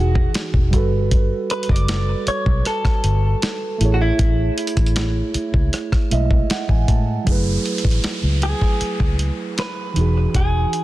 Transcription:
Already playing: E1 E3 D#4 F#4
0.00 G#4
0.15 kick
0.34 snare, closed hi-hat
0.54 E1, kick
0.71 G1 G3 F#4, kick, closed hi-hat
0.75 A4 B4
1.11 kick, closed hi-hat
1.50 B4, closed hi-hat
1.63 closed hi-hat
1.69 F#1 D5, kick
1.76 closed hi-hat
1.88 snare, closed hi-hat
2.27 C#5, muted fingered electric bass stroke, closed hi-hat
2.46 B1, kick
2.65 A4, cross-stick, closed hi-hat
2.85 muted fingered electric bass stroke, kick, cross-stick
3.04 G1, closed hi-hat
3.42 snare, closed hi-hat
3.78 A1 A3 E4, closed hi-hat
3.83 G#4 C#5
3.94 F#4
4.02 E4
4.19 A1, kick, closed hi-hat
4.58 closed hi-hat
4.67 closed hi-hat
4.77 A1, kick, closed hi-hat
4.86 closed hi-hat
4.96 snare, closed hi-hat
5.34 muted fingered electric bass stroke, closed hi-hat
5.54 C#2, kick
5.73 cross-stick, closed hi-hat
5.92 muted fingered electric bass stroke, kick, cross-stick
6.10 B1 G#3 A3 E4 D#5 E5, closed hi-hat
6.31 kick
6.50 F#5, muted fingered electric bass stroke, snare, closed hi-hat
6.69 A1 G#5, kick
6.88 A2 A5, kick, closed hi-hat
7.24 F#1 F#3 E4 G#4, kick, closed hi-hat, downlifter
7.29 A3 B4
7.66 closed hi-hat
7.78 closed hi-hat
7.85 A1, kick
7.91 closed hi-hat
8.04 snare, closed hi-hat
8.23 C#2
8.42 G#4, closed hi-hat
8.61 kick
8.81 muted fingered electric bass stroke, closed hi-hat
9.00 C#2, kick
9.19 closed hi-hat
9.58 B4, snare, closed hi-hat
9.93 E1 E3 D#4, closed hi-hat
9.98 F#4 G#4
10.35 E1 G#4, kick, closed hi-hat
10.73 closed hi-hat

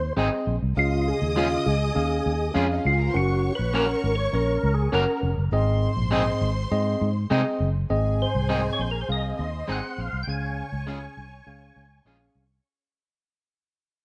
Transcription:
Already playing: D#2 C5 C6
0.17 G#1 G#3 C4 D#4 G#4 D#5
0.47 A#1
0.63 C2
0.77 C#2 C#3 C#4 F4 G#4 D#5 F5 D#6
1.08 G#4
1.22 D#2
1.36 G#3 C#4 F4 G#4 F5
1.66 C#2 G#4
1.95 D#2 C#4 G#4 F5
2.26 D#2
2.54 F2 G#3 C#4 F4 G#4 F5
2.72 D#4 D#5
2.78 F4 F5
2.85 C#2 F4 F#4 F#5
2.94 G#4 G#5
3.01 A#4 A#5
3.08 C5 C6
3.14 F#1 C#4 F#4 A#4 C#5 F#5 C#6
3.55 A#1 B4
3.74 A#3 C#4 F#4 A#4 F#5
4.04 G#1
4.15 C#5
4.33 A#1 C#4 A#4 C#5
4.63 C#2
4.74 G#4
4.92 F#1 A#3 C#4 F#4 A#4 F#5
5.23 F1
5.38 F#1
5.52 G#1 G#2 C4 G#4 C5 D#5 C6
5.97 A#1
6.11 G#3 C4 D#4 G#4 D#5
6.41 G#1
6.71 G#2 C4 G#4 D#5
7.01 G#2
7.30 C3 G#3 C4 D#4 G#4 D#5
7.60 F#1
7.90 G#1 G#2 C4 G#4 D#5 G#5
8.22 C5
8.35 C2
8.49 G#3 C4 D#4 G#4 D#5
8.73 C#5
8.79 A#1 C5
8.91 A#4
9.01 C5
9.09 C2 C4 G#4 D#5 F5
9.39 D#2 C5 C6
9.68 G#1 G#3 C4 D#4 G#4 C5
9.72 F#5
9.98 A#1 F5
10.13 C2
10.23 G5
10.27 C#2 C#3 C#4 G#4 C#5 F5 G#5 C#6
10.72 C#2
10.86 G#3 C#4 F4 G#4 C#5
11.17 C2
11.46 C#2 C#4 G#4 F5
11.76 C#2 G#5
12.05 A#1 G#3 C#4 F4 G#4 F5
12.35 C2

